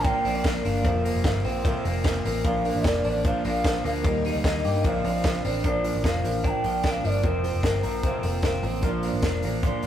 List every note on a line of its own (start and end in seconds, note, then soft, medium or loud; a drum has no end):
0.00 0.10 A1 loud
0.00 0.85 F3 medium
0.00 0.80 A#3 medium
0.00 0.25 D4 medium
0.00 0.81 D4 medium
0.00 0.81 F4 medium
0.00 3.35 F4 medium
0.00 0.82 A#4 medium
0.04 0.24 A#2 medium
0.04 0.25 F3 medium
0.04 0.25 A#3 medium
0.04 0.23 D4 loud
0.04 0.45 G5 loud
0.04 kick loud
0.04 hi-hat pedal medium
0.04 ride medium
0.24 0.59 A#1 loud
0.24 0.43 F3 soft
0.24 0.45 A#3 medium
0.24 0.35 C4 medium
0.24 0.45 D4 medium
0.24 open hi-hat medium
0.35 0.64 D4 medium
0.44 0.64 A#2 medium
0.44 0.65 F3 medium
0.44 0.64 A#3 medium
0.44 0.62 D4 medium
0.44 kick loud
0.44 snare loud
0.44 hi-hat pedal medium
0.44 ride medium
0.63 0.82 G1 medium
0.63 0.84 F3 soft
0.63 0.84 A#3 soft
0.63 0.84 D4 medium
0.63 1.41 F5 loud
0.63 open hi-hat medium
0.82 1.10 F1 loud
0.82 1.04 F2 medium
0.82 1.05 C3 medium
0.82 1.05 F3 medium
0.82 2.40 A#3 medium
0.82 1.04 A#3 medium
0.82 2.41 C4 medium
0.82 1.02 C4 medium
0.82 2.41 F4 medium
0.82 2.42 A#4 medium
0.82 kick loud
0.82 hi-hat pedal medium
0.82 ride medium
1.03 1.24 F3 medium
1.03 1.25 A#3 soft
1.03 1.24 C4 medium
1.03 open hi-hat medium
1.15 1.23 F1 medium
1.24 1.41 G1 medium
1.24 1.44 C3 medium
1.24 1.45 F3 medium
1.24 1.45 A#3 medium
1.24 1.44 C4 medium
1.24 kick loud
1.24 snare loud
1.24 hi-hat pedal medium
1.24 ride medium
1.45 1.70 A#1 medium
1.45 1.65 F3 medium
1.45 1.65 A#3 medium
1.45 1.65 C4 medium
1.45 open hi-hat medium
1.65 1.85 F2 loud
1.65 1.85 C3 loud
1.65 1.85 F3 loud
1.65 1.86 A#3 loud
1.65 1.84 C4 loud
1.65 kick loud
1.65 hi-hat pedal medium
1.65 ride medium
1.85 2.19 F1 loud
1.85 2.05 F3 medium
1.85 2.06 A#3 medium
1.85 2.05 C4 medium
1.85 open hi-hat medium
2.04 2.25 C3 medium
2.04 2.25 F3 medium
2.04 2.25 A#3 medium
2.04 2.23 C4 medium
2.04 kick loud
2.04 snare loud
2.04 hi-hat pedal medium
2.04 ride medium
2.25 2.42 A1 loud
2.25 2.44 F3 medium
2.25 2.45 A#3 medium
2.25 2.45 C4 medium
2.25 open hi-hat medium
2.44 2.70 A#1 loud
2.44 2.65 A#2 medium
2.44 2.65 F3 medium
2.44 4.01 A#3 medium
2.44 2.65 A#3 medium
2.44 4.01 D4 medium
2.44 2.63 D4 medium
2.44 4.02 F4 medium
2.44 4.02 A#4 medium
2.44 2.89 F5 loud
2.44 kick loud
2.44 hi-hat pedal medium
2.44 ride medium
2.65 2.84 F3 soft
2.65 2.84 A#3 medium
2.65 2.84 D4 medium
2.65 open hi-hat medium
2.75 2.83 A1 medium
2.83 3.02 F1 medium
2.83 3.04 A#2 medium
2.83 3.05 F3 medium
2.83 3.04 A#3 medium
2.83 3.03 D4 medium
2.83 3.25 D5 loud
2.83 kick loud
2.83 snare loud
2.83 ride medium
3.04 3.30 A1 loud
3.04 3.25 F3 soft
3.04 3.25 A#3 medium
3.04 3.24 D4 medium
3.04 open hi-hat medium
3.24 3.44 A#2 medium
3.24 3.45 F3 loud
3.24 3.45 A#3 loud
3.24 3.42 D4 medium
3.24 3.44 F5 loud
3.24 kick loud
3.24 hi-hat pedal medium
3.24 ride medium
3.44 3.79 A#1 loud
3.44 3.64 F3 medium
3.44 3.65 A#3 medium
3.44 3.64 D4 medium
3.44 3.83 F5 loud
3.44 open hi-hat medium
3.64 3.84 A#2 medium
3.64 3.85 F3 medium
3.64 3.85 A#3 medium
3.64 3.83 D4 medium
3.64 kick loud
3.64 snare loud
3.64 hi-hat pedal medium
3.64 ride medium
3.84 4.02 D2 loud
3.84 4.04 F3 soft
3.84 4.05 A#3 medium
3.84 4.04 D4 soft
3.84 3.93 F5 loud
3.84 open hi-hat medium
4.02 4.30 D#2 loud
4.02 4.24 D#3 medium
4.02 4.24 G3 medium
4.02 4.81 A#3 medium
4.02 4.25 A#3 medium
4.02 4.82 D#4 medium
4.02 4.82 G4 medium
4.02 4.83 A#4 medium
4.02 kick loud
4.02 hi-hat pedal medium
4.02 ride medium
4.06 4.23 D#4 medium
4.06 4.43 D#5 medium
4.24 4.45 G3 soft
4.24 4.45 A#3 medium
4.24 4.44 D#4 medium
4.24 open hi-hat medium
4.35 4.43 D2 medium
4.44 4.61 D#2 medium
4.44 4.64 D#3 medium
4.44 4.65 G3 medium
4.44 4.65 A#3 medium
4.44 4.64 D#4 medium
4.44 4.82 D#5 medium
4.44 kick loud
4.44 snare loud
4.44 hi-hat pedal medium
4.44 ride medium
4.64 4.82 G2 medium
4.64 4.85 A#3 medium
4.64 4.85 D#4 medium
4.64 4.88 G4 medium
4.64 open hi-hat medium
4.68 4.85 G3 soft
4.83 5.01 A#1 loud
4.83 5.04 A#2 medium
4.83 5.05 D3 medium
4.83 5.05 F3 medium
4.83 5.62 C4 medium
4.83 5.05 C4 medium
4.83 5.62 D4 medium
4.83 5.04 D4 loud
4.83 5.63 F4 medium
4.83 5.63 A#4 medium
4.83 5.41 F5 loud
4.83 kick loud
4.83 hi-hat pedal medium
4.83 ride medium
5.04 5.38 A#1 loud
5.04 5.26 F3 soft
5.04 5.25 C4 medium
5.04 5.24 D4 medium
5.04 open hi-hat medium
5.24 5.44 D3 medium
5.24 5.45 F3 medium
5.24 5.45 C4 medium
5.24 kick loud
5.24 snare loud
5.24 hi-hat pedal medium
5.24 ride medium
5.29 5.43 D4 medium
5.45 5.62 A1 loud
5.45 5.65 F3 medium
5.45 5.65 C4 medium
5.45 5.64 D4 medium
5.45 open hi-hat medium
5.63 5.90 A#1 loud
5.63 5.85 A#2 medium
5.63 5.85 F3 medium
5.63 7.20 D4 medium
5.63 7.21 F4 medium
5.63 7.21 A#4 medium
5.63 6.02 D5 medium
5.63 kick loud
5.63 closed hi-hat medium
5.68 5.85 A#3 medium
5.68 5.83 D4 medium
5.84 6.03 F3 soft
5.84 6.04 A#3 soft
5.84 6.04 D4 medium
5.84 open hi-hat medium
5.95 6.03 A1 medium
6.03 6.21 F1 medium
6.03 6.24 A#2 medium
6.03 6.24 F3 medium
6.03 6.24 A#3 medium
6.03 6.23 D4 medium
6.03 6.48 F5 loud
6.03 kick loud
6.03 snare loud
6.03 closed hi-hat medium
6.24 6.49 A1 medium
6.24 6.44 F3 soft
6.24 6.45 A#3 soft
6.24 6.44 D4 medium
6.24 open hi-hat medium
6.44 6.64 A#2 medium
6.44 6.65 F3 medium
6.44 6.64 A#3 medium
6.44 6.62 D4 medium
6.44 6.51 A#5 loud
6.44 kick loud
6.44 closed hi-hat medium
6.50 6.87 G5 loud
6.64 6.98 A#1 loud
6.64 6.84 F3 soft
6.64 6.85 A#3 medium
6.64 6.84 D4 soft
6.64 open hi-hat medium
6.83 7.04 A#2 medium
6.83 7.04 F3 medium
6.83 7.04 A#3 medium
6.83 7.03 D4 medium
6.83 6.92 G5 medium
6.83 kick loud
6.83 snare loud
6.83 closed hi-hat medium
6.91 7.08 F5 loud
7.04 7.21 G1 medium
7.04 7.24 F3 soft
7.04 7.25 A#3 soft
7.04 7.24 D4 medium
7.04 7.11 D#5 medium
7.04 open hi-hat medium
7.10 7.28 D5 medium
7.22 7.49 F1 loud
7.22 7.44 F2 medium
7.22 7.44 C3 medium
7.22 7.45 F3 medium
7.22 7.44 A#3 medium
7.22 8.80 C4 medium
7.22 7.42 C4 medium
7.22 8.81 F4 medium
7.22 8.81 A#4 medium
7.22 8.05 C5 medium
7.22 kick loud
7.22 closed hi-hat medium
7.44 7.63 F3 soft
7.44 7.64 A#3 soft
7.44 7.64 C4 medium
7.44 open hi-hat medium
7.55 7.63 F1 medium
7.63 7.81 G1 medium
7.63 7.83 C3 medium
7.63 7.84 F3 medium
7.63 7.84 A#3 medium
7.63 7.82 C4 medium
7.63 kick loud
7.63 snare loud
7.63 closed hi-hat medium
7.83 8.09 A#1 medium
7.83 8.05 F3 medium
7.83 8.05 A#3 medium
7.83 8.04 C4 medium
7.83 8.02 A#5 medium
7.83 open hi-hat medium
8.03 8.24 F2 medium
8.03 8.24 C3 loud
8.03 8.25 F3 medium
8.03 8.24 A#3 medium
8.03 8.22 C4 loud
8.03 8.41 G5 medium
8.03 kick loud
8.03 closed hi-hat medium
8.23 8.58 F1 loud
8.23 8.44 F3 medium
8.23 8.44 A#3 soft
8.23 8.43 C4 medium
8.23 open hi-hat medium
8.42 8.64 C3 medium
8.42 8.65 F3 medium
8.42 8.65 A#3 medium
8.42 8.88 C4 medium
8.42 8.81 F5 medium
8.42 kick loud
8.42 snare loud
8.42 closed hi-hat medium
8.48 8.63 C4 medium
8.63 8.80 A1 loud
8.63 8.82 F3 medium
8.63 8.84 A#3 medium
8.63 8.84 C4 medium
8.63 open hi-hat medium
8.68 8.83 F3 medium
8.81 9.09 A#1 loud
8.81 9.04 A#2 medium
8.81 9.04 F3 medium
8.81 9.87 D4 medium
8.81 9.87 F4 medium
8.81 9.62 F4 medium
8.81 9.87 A#4 medium
8.81 kick loud
8.81 closed hi-hat medium
8.86 9.05 A#3 medium
8.86 9.03 D4 loud
9.03 9.25 A#3 medium
9.03 9.24 D4 medium
9.03 open hi-hat medium
9.08 9.24 F3 soft
9.13 9.22 A1 medium
9.22 9.40 F1 medium
9.22 9.44 A#2 medium
9.22 9.45 F3 medium
9.22 9.44 A#3 medium
9.22 kick loud
9.22 snare loud
9.22 closed hi-hat medium
9.27 9.43 D4 medium
9.43 9.69 A1 medium
9.43 9.64 A#3 medium
9.43 9.64 D4 medium
9.43 open hi-hat medium
9.47 9.64 F3 medium
9.63 9.84 A#2 loud
9.63 9.84 F3 medium
9.63 9.84 A#3 medium
9.63 9.82 D4 loud
9.63 9.87 F4 medium
9.63 kick loud
9.63 closed hi-hat medium
9.83 9.87 A#1 loud
9.83 9.87 A#3 medium
9.83 9.87 D4 medium
9.83 open hi-hat medium